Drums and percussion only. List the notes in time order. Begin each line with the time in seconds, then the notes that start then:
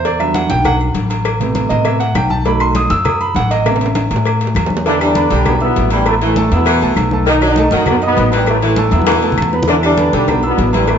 0.05 cowbell, high conga, low agogo
0.20 high conga, low agogo, claves
0.34 cowbell, high conga, low agogo
0.50 cowbell, high conga
0.65 cowbell, high conga, low conga, low agogo, claves
0.80 high conga, low agogo
0.95 cowbell, high conga
1.10 cowbell, low agogo
1.25 cowbell, high conga, low agogo, claves
1.40 cowbell, high conga
1.55 cowbell, high conga, low agogo
1.70 cowbell, low agogo
1.85 cowbell, high conga, low agogo, claves
2.00 cowbell, high conga
2.15 cowbell, high conga, low timbale, low agogo, claves
2.30 high conga
2.45 cowbell, high conga, low agogo
2.60 high conga, low agogo, claves
2.75 cowbell, high conga, low agogo
2.90 cowbell, high conga
3.05 cowbell, high conga, low conga, low agogo, claves
3.20 high conga, low agogo
3.35 cowbell, high conga
3.51 cowbell, low agogo
3.65 cowbell, high conga, high timbale, low agogo, claves
3.76 high timbale
3.80 cowbell, high conga
3.86 high timbale
3.95 cowbell, high conga, high timbale, low agogo
4.11 cowbell, low agogo
4.16 low timbale
4.25 cowbell, high conga, low agogo, claves
4.40 cowbell, high conga
4.47 low timbale
4.55 cowbell, high conga, low timbale, low agogo, claves
4.66 high conga, low timbale
4.77 low timbale
4.85 cowbell, high conga, low agogo
5.00 high conga, low agogo, claves
5.15 cowbell, high conga, low agogo
5.31 cowbell, high conga
5.46 cowbell, high conga, low conga, low agogo, claves
5.60 high conga, low agogo
5.76 cowbell, high conga
5.90 cowbell, low agogo
6.06 cowbell, high conga, low agogo, claves
6.21 cowbell, high conga
6.36 cowbell, high conga, low agogo
6.52 cowbell, low agogo
6.66 cowbell, high conga, low agogo, claves
6.82 cowbell, high conga
6.96 cowbell, high conga, low timbale, low agogo, claves
7.11 high conga
7.26 cowbell, high conga, low agogo
7.41 high conga, low agogo, claves
7.56 cowbell, high conga, low agogo
7.71 cowbell, high conga
7.86 cowbell, high conga, low conga, low agogo, claves
8.01 high conga, low agogo
8.17 cowbell, high conga, low timbale
8.32 cowbell, low agogo
8.47 cowbell, high conga, low agogo, claves
8.61 cowbell, high conga
8.76 cowbell, high conga, low agogo
8.91 cowbell, high conga, low agogo
9.02 high conga
9.07 cowbell, high bongo, low agogo, claves
9.12 high conga
9.23 cowbell
9.32 low conga
9.38 cowbell, low agogo, claves
9.42 low conga
9.53 low bongo
9.63 low conga
9.68 cowbell, high conga, low agogo
9.83 high conga, low agogo, claves
9.98 cowbell, high conga, low agogo
10.13 cowbell, high conga
10.28 cowbell, high conga, low conga, low agogo, claves
10.43 high conga, low agogo
10.58 cowbell, high conga, low timbale
10.73 cowbell, high conga, low agogo
10.87 cowbell, low agogo, claves